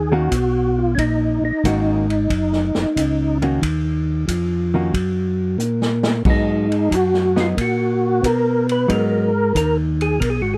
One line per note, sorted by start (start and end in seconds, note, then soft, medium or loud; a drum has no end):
0.00 0.29 D#2 medium
0.00 0.14 G#4 medium
0.12 0.30 D#3 medium
0.12 0.30 A#3 medium
0.12 0.30 C#4 medium
0.12 0.80 F#4 medium
0.12 0.31 F#4 medium
0.31 0.96 B1 medium
0.31 kick soft
0.31 hi-hat pedal medium
0.31 ride medium
0.78 0.94 F4 medium
0.95 1.40 A#1 medium
0.95 0.98 C#4 soft
0.95 1.44 D#4 medium
0.95 kick soft
0.95 ride medium
1.42 1.52 A#1 soft
1.42 3.38 D#4 medium
1.63 2.28 G#1 medium
1.63 2.05 D#3 medium
1.63 2.05 A#3 medium
1.63 2.05 C#4 soft
1.63 2.06 F#4 medium
1.63 kick soft
1.63 hi-hat pedal medium
1.63 ride medium
2.10 ride soft
2.30 2.72 F#1 medium
2.30 kick soft
2.30 ride medium
2.52 snare soft
2.75 2.86 F#1 soft
2.75 snare soft
2.96 3.60 C#2 medium
2.96 kick soft
2.96 hi-hat pedal medium
2.96 ride medium
3.42 3.60 D#3 medium
3.42 3.60 A#3 medium
3.42 3.61 C#4 medium
3.42 3.61 F#4 medium
3.42 ride soft
3.62 4.26 D#2 medium
3.62 kick soft
3.62 ride medium
4.28 4.92 F2 medium
4.28 kick soft
4.28 hi-hat pedal soft
4.28 ride medium
4.74 4.92 D#3 medium
4.74 4.92 A#3 medium
4.74 4.93 C#4 medium
4.74 4.93 F#4 medium
4.93 5.57 F#2 medium
4.93 kick soft
4.93 ride medium
5.58 6.23 A#2 medium
5.58 hi-hat pedal medium
5.82 snare soft
6.03 snare medium
6.25 6.89 G#2 medium
6.25 6.67 F#3 medium
6.25 6.67 B3 medium
6.25 6.67 D#4 medium
6.25 kick medium
6.25 crash medium
6.30 6.96 D#4 medium
6.72 ride soft
6.91 7.55 F#2 medium
6.91 kick soft
6.91 hi-hat pedal soft
6.91 ride medium
6.95 7.40 F#4 medium
7.14 snare soft
7.36 7.55 F#3 medium
7.36 7.55 B3 medium
7.36 7.55 D#4 medium
7.36 snare soft
7.40 7.49 F4 medium
7.57 8.21 A#2 medium
7.57 kick soft
7.57 ride medium
7.61 8.27 F#4 medium
8.23 8.87 B2 medium
8.23 8.67 A#4 medium
8.23 kick soft
8.23 hi-hat pedal soft
8.23 ride medium
8.69 8.91 B4 medium
8.69 ride soft
8.88 9.53 G#2 medium
8.88 9.30 F#3 medium
8.88 9.30 B3 medium
8.88 9.30 D#4 medium
8.88 9.56 A#4 medium
8.88 kick soft
8.88 ride medium
9.55 10.19 D#2 medium
9.55 9.77 A#4 medium
9.55 kick soft
9.55 hi-hat pedal medium
9.55 ride medium
10.01 10.20 G#4 medium
10.01 ride soft
10.20 10.42 B1 medium
10.20 10.29 A#4 medium
10.20 kick soft
10.20 ride medium
10.30 10.42 G#4 medium
10.42 10.58 G#1 soft
10.42 10.54 F#4 medium
10.54 10.58 G#4 medium